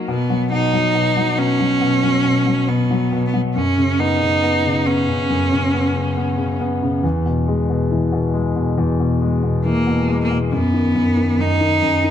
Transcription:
Already playing: F#3
0.08 B2 B3
0.30 F#3
0.52 B2 D#4
0.73 F#3
0.94 B2
1.17 F#3
1.38 B2 C#4
1.60 F#3
1.81 B2
2.03 F#3
2.25 B2
2.46 F#3
2.68 B2 B3
2.90 F#3
3.12 B2
3.27 B3
3.34 F#3
3.56 F#2 C#4
3.77 C#3
3.99 B3 D#4
4.21 C#3
4.43 B3
4.65 C#3
4.87 B3 C#4
5.08 C#3
5.30 F#2
5.52 C#3
5.74 B3
5.95 C#3
6.17 B3
6.38 C#3
6.61 B3
6.83 C#3
7.03 E2
7.26 B2
7.48 G#3
7.70 B2
7.91 E3
8.12 B2
8.34 G#3
8.56 B2
8.78 E2
9.00 B2
9.22 G#3
9.43 B2
9.65 E3 A#3
9.87 B2
10.08 G#3
10.24 A#3
10.30 B2
10.52 F#2 B3
10.73 D#3
10.95 F#2
11.17 D#3
11.39 F#2 D#4
11.61 D#3
11.82 F#2
12.04 D#3

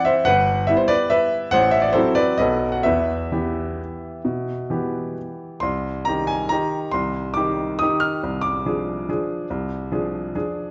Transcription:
Already playing: E3 C4 E4
0.05 C5 E5
0.25 G1 B4 F#5
0.67 G3 B3 E4 E5
0.77 C5
0.88 B4 D5
1.10 B4 E5
1.51 A1 C5 F#5
1.71 E5
1.82 D5
1.93 F#3 C4 E4 A4 C5
2.15 B4 D5
2.38 B1 F#3 B3 A4 B4 D#5
2.72 F#5
2.83 E2 B4 E5
3.32 E3 B3 G4
4.25 B2
4.70 E3 B3 G4
5.60 C2 C6
6.05 D#3 D#4 G4 A#5
6.27 G#5
6.49 D#3 D#4 G4 A#5
6.92 C2 C6
7.34 D#3 D#4 G4 D6
7.79 D#3 D#4 G4 D#6
8.00 F6
8.23 C2
8.41 D6
8.66 F3 D4 G#4
9.09 F3 D4 G#4
9.50 C2
9.92 F3 D4 G#4
10.35 F3 D4 G#4

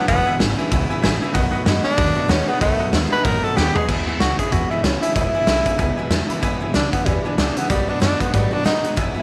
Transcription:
0.07 E1 E2 B2 E3 G#3 B3 E4 B4 E5 G#5, kick, open hi-hat
0.25 E3 G#3 B3 E4 B4 E5 G#5
0.39 G#1 E2 C#3 E3 G#3 B3 E4 B4 E5 G#5, snare, open hi-hat
0.57 E2 C#3 E3 G#3 B3 E4 B4 E5 G#5, muted upright bass stroke
0.70 C#2 E2 B2 E3 G#3 B3 E4 B4 E5 G#5, kick, open hi-hat
0.89 E3 G#3 B3 E4 B4 E5 G#5, muted upright bass stroke
1.02 A1 E2 C#3 E3 G#3 B3 E4 B4 E5 G#5, snare, open hi-hat
1.21 E2 C#3 E3 G#3 B3 E4 B4 E5 G#5
1.33 B1 B2 D#3 F#3 A3 B3 F#4 B4 D#5 F#5, kick, open hi-hat
1.51 B3 F#4 B4 D#5 F#5, muted upright bass stroke
1.55 A3
1.65 F#2 B2 D#3 G#3 A3 B3 F#4 B4 D#5 F#5, snare, open hi-hat
1.84 B2 G#3 A3 B3 D4 F#4 B4 D#5 F#5, muted upright bass stroke
1.97 D#2 B2 D#3 F#3 A3 B3 F#4 B4 D#5 F#5, kick, open hi-hat
2.15 A3 B3 F#4 B4 D#5 F#5
2.28 D#2 B2 D#3 G#3 A3 B3 C#4 F#4 B4 D#5 F#5, snare, open hi-hat
2.47 B2 G#3 A3 B3 F#4 B4 D#5 F#5
2.61 B1 B2 D#3 F#3 A3 B3 F#4 B4 D#5 F#5, kick, open hi-hat
2.79 A3 B3 F#4 B4 D#5 F#5, muted upright bass stroke
2.92 D#2 B2 D#3 G#3 A3 B3 F#4 B4 D#5 F#5, snare, open hi-hat
3.11 B2 G#3 A3 B3 F#4 B4 D#5 F#5, muted upright bass stroke
3.24 A1 B2 D#3 F#3 A3 B3 F#4 A#4 B4 D#5 F#5, kick, open hi-hat
3.42 A3 B3 F#4 A4 B4 D#5 F#5, muted upright bass stroke
3.56 D#2 B2 D#3 G#3 A3 B3 F#4 G4 B4 D#5 F#5, snare
3.74 B2 G#3 A3 B3 F#4 G#4 B4 D#5 F#5, floor tom
3.87 E1 E2 B2 E3 G#3 B3 E4 B4 E5 G#5, kick, crash
4.07 A1 E2 B2 E3 G#3 B3 E4 B4 E5 G#5
4.19 C#2 E2 B2 C#3 E3 G#3 B3 E4 F#4 B4 E5 G#5, snare, closed hi-hat
4.37 E2 C#3 E3 G#3 B3 E4 G#4 B4 E5 G#5, kick, closed hi-hat
4.51 E2 B2 E3 G#3 B3 E4 F#4 B4 E5 G#5, kick, closed hi-hat
4.69 E2 B2 E3 G#3 B3 E4 B4 E5 G#5
4.83 C#2 E2 B2 C#3 E3 G#3 B3 C#4 E4 B4 E5 G#5, snare, closed hi-hat
5.01 E2 C#3 E3 G#3 B3 E4 B4 E5 G#5, closed hi-hat
5.14 E1 E2 B2 E3 G#3 B3 E4 B4 E5 G#5, kick, closed hi-hat
5.33 E2 B2 E3 G#3 B3 E4 B4 E5 G#5
5.47 B1 E2 B2 C#3 E3 G#3 B3 E4 B4 E5 G#5, snare, closed hi-hat
5.66 E2 C#3 E3 G#3 B3 E4 B4 E5 G#5, kick, closed hi-hat
5.78 C#2 E2 B2 E3 G#3 B3 E4 B4 E5 G#5, kick, closed hi-hat
5.96 E2 B2 E3 G#3 B3 E4 B4 E5 G#5
6.09 E2 B2 C#3 E3 G#3 B3 E4 B4 E5 G#5, snare, closed hi-hat
6.28 E2 C#3 E3 G#3 B3 E4 B4 E5 B5, muted upright bass stroke, closed hi-hat
6.42 E1 E2 B2 E3 G#3 B3 E4 B4 E5 G#5, kick, closed hi-hat
6.60 A1 E2 B2 E3 G#3 B3 E4 B4 E5 G#5
6.73 C#2 E2 B2 C#3 E3 G#3 B3 D4 E4 B4 E5 G#5, snare, closed hi-hat
6.92 E2 C#3 E3 G#3 B3 E4 B4 E5 G#5, kick, closed hi-hat
7.06 E2 B2 E3 G3 G#3 B3 E4 B4 E5 G#5, kick, closed hi-hat
7.24 E2 B2 E3 G#3 B3 D4 E4 B4 E5 G#5, muted upright bass stroke
7.37 C#2 E2 B2 C#3 E3 G#3 B3 D4 E4 B4 E5 G#5, snare, closed hi-hat
7.56 E2 C#3 E3 G#3 B3 E4 B4 E5 G#5, closed hi-hat
7.69 B1 B2 D#3 F#3 G3 A3 B3 F#4 B4 D#5 F#5, kick, closed hi-hat
7.87 B2 F#3 A3 B3 D4 F#4 B4 D#5 F#5, muted upright bass stroke
8.00 F#2 B2 D#3 G#3 A3 B3 D4 F#4 B4 D#5 F#5, snare, closed hi-hat
8.20 B2 G#3 A3 B3 F#4 B4 D#5 F#5, kick, closed hi-hat
8.33 G#2 B2 D#3 F#3 G3 A3 B3 F#4 B4 D#5 F#5, kick, closed hi-hat
8.51 B2 F#3 A3 B3 D4 F#4 B4 D#5 F#5, muted upright bass stroke
8.64 B2 D#3 G#3 A3 B3 D#4 F#4 B4 D#5 F#5, snare, closed hi-hat
8.82 B2 G#3 A3 B3 F#4 B4 D#5 F#5, muted upright bass stroke, closed hi-hat
8.96 E1 E2 B2 E3 G#3 B3 E4 B4 E5 G#5, kick, closed hi-hat
9.14 A1 E2 B2 E3 G#3 B3 E4 B4 E5 G#5
9.19 E4

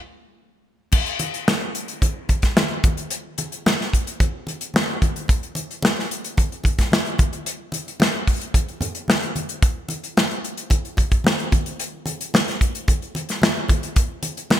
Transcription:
0.92 kick, crash, muted conga
1.06 closed hi-hat
1.19 closed hi-hat, muted conga
1.34 closed hi-hat
1.48 snare, high conga
1.75 closed hi-hat
1.88 closed hi-hat
2.02 kick, closed hi-hat, muted conga
2.29 kick, closed hi-hat, muted conga
2.42 kick, snare, closed hi-hat
2.57 snare, high conga
2.84 kick, closed hi-hat, high conga
2.97 closed hi-hat
3.10 closed hi-hat
3.38 closed hi-hat, muted conga
3.52 closed hi-hat
3.66 snare, high conga
3.81 snare
3.93 kick, closed hi-hat
4.07 closed hi-hat
4.20 kick, closed hi-hat, muted conga
4.47 closed hi-hat, muted conga
4.61 closed hi-hat
4.74 snare, high conga
5.02 kick, closed hi-hat, high conga
5.16 closed hi-hat
5.28 kick, closed hi-hat, muted conga
5.43 closed hi-hat
5.55 closed hi-hat, muted conga
5.71 closed hi-hat
5.82 snare, high conga
5.99 snare
6.11 closed hi-hat
6.24 closed hi-hat
6.37 kick, closed hi-hat, muted conga
6.52 closed hi-hat
6.64 kick, closed hi-hat, muted conga
6.78 kick, snare, closed hi-hat
6.92 snare, high conga
7.06 closed hi-hat
7.19 kick, closed hi-hat, high conga
7.33 closed hi-hat
7.46 closed hi-hat
7.72 closed hi-hat, muted conga
7.88 closed hi-hat
8.00 snare, high conga
8.27 kick, open hi-hat
8.41 closed hi-hat
8.54 kick, closed hi-hat, muted conga
8.68 closed hi-hat
8.81 closed hi-hat, muted conga, low conga
8.95 closed hi-hat
9.08 snare, high conga
9.22 closed hi-hat
9.36 closed hi-hat, high conga
9.49 closed hi-hat
9.62 kick, closed hi-hat
9.89 closed hi-hat, muted conga
10.04 closed hi-hat
10.17 snare, high conga
10.31 closed hi-hat
10.44 closed hi-hat
10.57 closed hi-hat
10.70 kick, closed hi-hat, muted conga
10.85 closed hi-hat
10.97 kick, closed hi-hat, muted conga
11.11 kick, closed hi-hat
11.24 snare, high conga
11.39 closed hi-hat
11.52 kick, closed hi-hat, high conga
11.66 closed hi-hat
11.80 closed hi-hat
12.06 closed hi-hat, muted conga
12.21 closed hi-hat
12.34 snare, high conga
12.48 snare, closed hi-hat
12.61 kick, closed hi-hat
12.75 closed hi-hat
12.88 kick, closed hi-hat, muted conga
13.02 closed hi-hat
13.15 closed hi-hat, muted conga
13.29 snare, closed hi-hat
13.42 snare, high conga
13.68 kick, closed hi-hat, high conga
13.83 closed hi-hat
13.96 kick, closed hi-hat
14.23 closed hi-hat, muted conga
14.37 closed hi-hat
14.50 snare, high conga

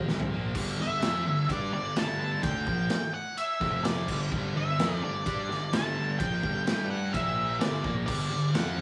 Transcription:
0.07 G1 G2 D3 G3, snare
0.20 floor tom, mid tom
0.31 A#1 A#2 F3 A#3
0.54 G1 G2 D3 G3, kick, crash
0.78 G1 G2 D3 E5
1.01 F2 F3 C4 F4, snare, ride bell
1.25 G1 G2 D3
1.49 G2 G3 D4 G4 D5, kick, ride bell
1.72 G1 G2 D3 D5
1.96 G1 G2 D3 G3 A5, snare, ride bell
2.21 A5
2.43 D2 D3 A3 D4 G5, kick, ride bell
2.66 A#1 A#2 F3 A#3, kick
2.90 snare, ride bell
3.14 F#5
3.37 E5, ride bell
3.61 F1 F2 C3 F3, kick, snare
3.84 D5, snare, ride bell
4.08 G1 G2 D3 G3, kick, crash
4.32 G1 G2 D3 G3, kick
4.55 G1 G2 D3 E5
4.79 F2 F3 C4 F4, snare, ride bell
5.02 G1 G2 D3 D5
5.26 G2 G3 D4 G4, kick, ride bell
5.49 G1 G2 D3, snare
5.73 G1 G2 D3 G3 A5, snare, ride bell
6.19 A#1 A#2 F3 A#3 G5, kick, ride bell
6.43 G1 G2 D3 G3, kick
6.66 G2 G3 D4 G4, snare, ride bell
6.91 F#5
7.13 A#1 A#2 F3 A#3 E5, kick, ride bell
7.60 G1 G2 D3 G3 D5, snare, ride bell
7.84 A#1 A#2 F3 A#3, kick
8.06 G1 G2 D3 G3 D5, kick, crash
8.31 G1 G2 D3
8.54 F2 F3 C4 F4 F#5, snare, ride bell
8.78 G1

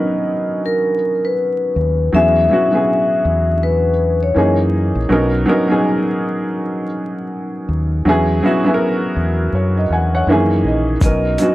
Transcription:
Already playing: F#3 B3 C#4 D#4 A#4 B4 D#5
0.66 A#4
1.25 B4
1.76 D#2
2.12 E2 F#3 B3 C#4 E4 G#4 E5
2.50 F#3 B3 C#4 E4 F#4
2.72 F#3 B3 C#4 E4 G#4
3.25 E2
3.63 B4
4.23 C#5
4.34 F#2 E3 A#3 C#4 D#4 G#4
4.95 A#1
5.09 B1 F#3 B3 C#4 D#4 A#4
5.46 F#3 B3 C#4 D#4 A#4
5.68 F#3 B3 C#4 D#4 G#4
7.69 D#2
8.05 E2 F#3 B3 C#4 E4 G#4
8.43 F#3 B3 C#4 E4 F#4
8.64 F#3 B3 C#4 E4 G#4
8.74 A#4
9.16 E2
9.53 F#2 C#5
9.77 D#5
9.90 E2 F#5 G#5
10.15 C#5 F#5
10.27 F#2 D#3 E3 A#3 C#4 E5
10.32 G#4
10.64 A#1 D#5
11.01 B1 F#3 B3 C#4 D#4 A#4 D#5, kick, closed hi-hat, shaker
11.38 F#3 B3 C#4 D#4 F#4, closed hi-hat, shaker

